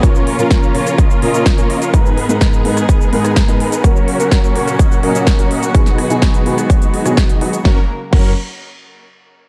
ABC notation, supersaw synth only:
X:1
M:4/4
L:1/16
Q:1/4=126
K:F#
V:1 name="Supersaw synth"
[A,CEAc]3 [A,CEAe] [A,CEAc]2 [A,CEAc]2 [A,CEAd] [A,CEAe] [A,CEAd] [A,CEAd] z [A,CEAc] [A,CEAd] [A,CEAe] | [B,DGAB]3 [B,DGAB] [B,DGAB]2 [B,DGAB]2 [B,DGAB] [B,DGAB] [B,DGAB] [B,DGAB] z [B,DGAB] [B,DGAB] [B,DGAB] | [A,CFAc]3 [A,CFAf] [A,CFAc]2 [A,CFAc]2 [A,CFAd] [A,CFAf] [A,CFAd] [A,CFAd] z [A,CFAc] [A,CFAd] [A,CFAf] | [B,DFGB]3 [B,DFGd] [B,DFGB]2 [B,DFGB]2 [B,DFGc] [B,DFGd] [B,DFGd] [B,DFGc] [B,DFGd]2 [B,DFGd] z |
[A,CFAc] z3 [A,CFAc]2 z8 z2 |]